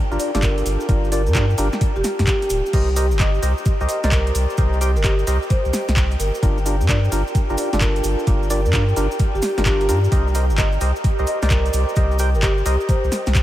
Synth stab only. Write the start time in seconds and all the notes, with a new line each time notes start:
0.12 D4 F4 G4 A#4
0.35 D4 F4 G4 A4
0.89 D4 F4 G4 A#4
1.12 D4 F4 G4 D5
1.35 D4 F4 G4 A#4
1.58 D4 F4 G4 A#4
2.73 G4 A#4 C5 D#5
2.96 G4 A#4 C5 D#5
3.20 G4 A#4 C5 D#5
3.43 G4 A#4 C5 D#5
3.81 G4 A#4 C5 D#5
4.04 G4 A#4 C5 D5
4.58 G4 A#4 C5 D#5
4.81 G4 A#4 C5 G5
5.04 G4 A#4 C5 D#5
5.27 G4 A#4 C5 D#5
6.43 D4 F4 G4 A#4
6.66 D4 F4 G4 A#4
6.89 D4 F4 G4 A#4
7.12 D4 F4 G4 A#4
7.50 D4 F4 G4 A#4
7.73 D4 F4 G4 A4
8.27 D4 F4 G4 A#4
8.50 D4 F4 G4 D5
8.73 D4 F4 G4 A#4
8.97 D4 F4 G4 A#4
9.58 D4 F4 G4 A#4
9.66 D4 F4 G4 A#4
9.89 D4 F4 G4 A#4
10.12 G4 A#4 C5 D#5
10.35 G4 A#4 C5 D#5
10.58 G4 A#4 C5 D#5
10.81 G4 A#4 C5 D#5
11.19 G4 A#4 C5 D#5
11.42 G4 A#4 C5 D5
11.96 G4 A#4 C5 D#5
12.20 G4 A#4 C5 G5
12.43 G4 A#4 C5 D#5
12.66 G4 A#4 C5 D#5